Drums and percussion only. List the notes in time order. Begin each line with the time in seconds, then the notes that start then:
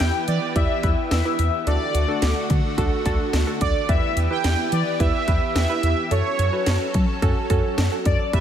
0.00 snare, closed hi-hat
0.28 closed hi-hat
0.56 kick, closed hi-hat
0.83 kick, closed hi-hat
1.11 snare, closed hi-hat
1.39 closed hi-hat
1.67 closed hi-hat
1.95 closed hi-hat
2.22 snare, closed hi-hat
2.50 kick, closed hi-hat
2.78 kick, closed hi-hat
3.06 kick, closed hi-hat
3.33 snare, closed hi-hat
3.61 kick, closed hi-hat
3.89 kick, closed hi-hat
4.17 closed hi-hat
4.44 snare, closed hi-hat
4.72 closed hi-hat
5.00 kick, closed hi-hat
5.28 kick, closed hi-hat
5.56 snare, closed hi-hat
5.83 closed hi-hat
6.11 closed hi-hat
6.39 closed hi-hat
6.66 snare, closed hi-hat
6.94 kick, closed hi-hat
7.22 kick, closed hi-hat
7.50 kick, closed hi-hat
7.78 snare, closed hi-hat
8.05 kick, closed hi-hat
8.33 kick, closed hi-hat